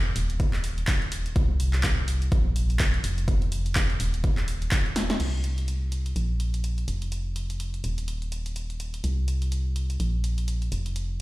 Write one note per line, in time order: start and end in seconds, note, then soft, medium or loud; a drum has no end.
0.00 0.14 F1 medium
0.16 1.34 D#1 medium
0.16 open hi-hat loud
0.30 closed hi-hat medium
0.40 kick loud
0.40 closed hi-hat medium
0.53 clap soft
0.64 open hi-hat loud
0.78 closed hi-hat medium
0.87 kick loud
0.87 clap loud
0.87 closed hi-hat medium
1.02 closed hi-hat soft
1.12 open hi-hat loud
1.26 closed hi-hat medium
1.36 2.30 C2 medium
1.36 kick loud
1.36 closed hi-hat medium
1.60 open hi-hat loud
1.73 clap soft
1.73 closed hi-hat medium
1.83 kick loud
1.83 clap loud
1.83 closed hi-hat medium
2.08 open hi-hat loud
2.22 closed hi-hat medium
2.32 3.02 A#1 medium
2.32 kick loud
2.32 closed hi-hat medium
2.56 open hi-hat loud
2.70 closed hi-hat medium
2.79 kick loud
2.79 clap loud
2.79 closed hi-hat medium
2.94 closed hi-hat soft
3.04 3.98 F1 medium
3.04 open hi-hat loud
3.18 closed hi-hat medium
3.28 kick loud
3.28 closed hi-hat medium
3.42 closed hi-hat soft
3.52 open hi-hat loud
3.66 closed hi-hat medium
3.75 kick loud
3.75 clap loud
3.75 closed hi-hat medium
3.90 closed hi-hat soft
4.00 5.18 D#1 medium
4.00 open hi-hat loud
4.14 closed hi-hat medium
4.24 kick loud
4.24 closed hi-hat medium
4.37 clap soft
4.37 closed hi-hat soft
4.48 open hi-hat loud
4.62 closed hi-hat medium
4.71 kick loud
4.71 clap loud
4.71 closed hi-hat medium
4.86 closed hi-hat soft
4.96 snare medium
4.96 open hi-hat loud
5.10 snare medium
5.10 closed hi-hat medium
5.20 6.14 C2 medium
5.20 closed hi-hat medium
5.20 crash medium
5.44 closed hi-hat medium
5.58 closed hi-hat soft
5.68 closed hi-hat medium
5.92 closed hi-hat medium
6.06 closed hi-hat soft
6.16 6.86 A#1 medium
6.16 closed hi-hat medium
6.40 closed hi-hat medium
6.54 closed hi-hat medium
6.64 closed hi-hat medium
6.78 closed hi-hat soft
6.88 7.82 F1 medium
6.88 closed hi-hat medium
7.02 closed hi-hat soft
7.12 closed hi-hat medium
7.36 closed hi-hat medium
7.50 closed hi-hat soft
7.60 closed hi-hat medium
7.74 closed hi-hat soft
7.84 9.02 D#1 medium
7.84 closed hi-hat medium
7.98 closed hi-hat medium
8.08 closed hi-hat medium
8.22 closed hi-hat soft
8.32 closed hi-hat medium
8.46 closed hi-hat soft
8.56 closed hi-hat medium
8.70 closed hi-hat soft
8.80 closed hi-hat medium
8.94 closed hi-hat soft
9.04 9.98 C2 medium
9.04 closed hi-hat medium
9.28 closed hi-hat medium
9.42 closed hi-hat soft
9.52 closed hi-hat medium
9.76 closed hi-hat medium
9.90 closed hi-hat soft
10.00 10.70 A#1 medium
10.00 closed hi-hat medium
10.24 closed hi-hat medium
10.38 closed hi-hat soft
10.48 closed hi-hat medium
10.62 closed hi-hat soft
10.72 11.21 F1 medium
10.72 closed hi-hat medium
10.86 closed hi-hat soft
10.96 closed hi-hat medium